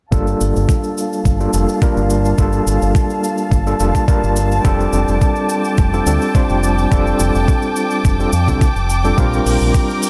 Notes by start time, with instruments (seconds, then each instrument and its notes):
0.11 fingered electric bass G1, tine electric piano G3 A#3 D4 F4 A4, string section F5 A5, kick, cabasa
0.27 cabasa
0.41 fingered electric bass G1, cabasa
0.56 fingered electric bass G1, cabasa
0.69 kick, cabasa
0.84 cabasa
0.98 cabasa
1.13 cabasa
1.25 fingered electric bass G1, kick, cabasa
1.40 tine electric piano G3 A#3 D4 F4 A4, cabasa
1.53 fingered electric bass F1, tine electric piano G3 A#3 D4 F4 A4, cabasa
1.69 cabasa
1.82 tine electric piano G3 A#3 D4 F4 A#4, kick, cabasa
1.97 fingered electric bass G1, cabasa
2.10 cabasa
2.25 cabasa
2.37 fingered electric bass G1, tine electric piano G3 A#3 D4 F4 A4, kick, cabasa
2.52 cabasa
2.66 fingered electric bass G1, cabasa
2.82 fingered electric bass G1, cabasa
2.95 kick, cabasa
3.10 cabasa
3.24 cabasa
3.38 cabasa
3.51 fingered electric bass G1, kick, cabasa
3.66 tine electric piano G3 A#3 D4 F4 A4, cabasa
3.79 fingered electric bass F1, tine electric piano G3 A#3 D4 F4 A4, cabasa
3.95 kick, cabasa
4.07 tine electric piano G3 A#3 D4 F4 A#4, kick, cabasa
4.23 fingered electric bass G1, cabasa
4.36 cabasa
4.52 cabasa
4.64 fingered electric bass F1, tine electric piano G3 C4 D4 F4 A4, string section G5 D6, kick, cabasa
4.80 cabasa
4.93 fingered electric bass F1, cabasa
5.08 fingered electric bass F1, cabasa
5.21 kick, cabasa
5.36 cabasa
5.49 cabasa
5.64 cabasa
5.77 fingered electric bass F1, kick, cabasa
5.93 tine electric piano G3 C4 D4 F4 A4, cabasa
6.06 fingered electric bass D2, tine electric piano G3 C4 D4 F4 A4, cabasa
6.22 cabasa
6.34 tine electric piano G3 C4 D4 F4 C5, kick, cabasa
6.50 fingered electric bass F1, cabasa
6.63 cabasa
6.78 cabasa
6.91 fingered electric bass F1, tine electric piano G3 C4 D4 F4 A4, kick, cabasa
7.07 cabasa
7.19 fingered electric bass F1, cabasa
7.35 fingered electric bass F1, cabasa
7.48 kick, cabasa
7.62 cabasa
7.76 cabasa
7.90 cabasa
8.05 fingered electric bass F1, kick, cabasa
8.19 tine electric piano G3 C4 D4 F4 A4, cabasa
8.32 fingered electric bass F2, cabasa
8.48 fingered electric bass C2, tine electric piano G3 C4 D4 F4 A4, kick, cabasa
8.61 kick, cabasa
8.76 fingered electric bass F1, cabasa
8.90 cabasa
9.04 tine electric piano G3 C4 D4 F4 A4, cabasa
9.17 fingered electric bass A#1, tine electric piano G3 C4 D4 F4 A#4, string section A#4, kick, cabasa
9.33 cabasa
9.46 fingered electric bass A#1, open hi-hat, cabasa
9.61 fingered electric bass A#1, cabasa
9.74 kick, cabasa
9.90 cabasa
10.02 open hi-hat, cabasa